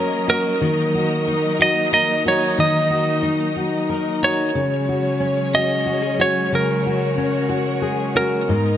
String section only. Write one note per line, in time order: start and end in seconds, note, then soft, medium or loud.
0.00 4.50 F#3 medium
0.00 4.50 A#3 medium
0.00 0.57 C#4 medium
0.00 4.51 A#4 medium
0.00 4.51 D#5 medium
0.61 4.51 D#4 medium
4.52 8.44 F#3 medium
4.52 8.77 G#3 medium
4.52 8.44 C#4 medium
4.52 6.49 G#4 medium
4.52 8.44 C#5 medium
6.51 8.46 F#4 medium
8.48 8.77 B3 medium
8.48 8.77 D#4 medium
8.48 8.77 D#5 medium
8.48 8.77 A#5 medium